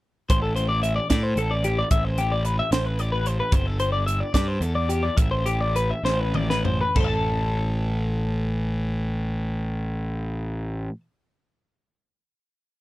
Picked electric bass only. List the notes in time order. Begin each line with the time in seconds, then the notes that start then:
0.30 A1
1.10 A2
1.36 A1
1.91 A1
2.71 A1
3.52 G1
4.34 G2
4.60 E2
5.17 A1
6.03 A1
6.96 A1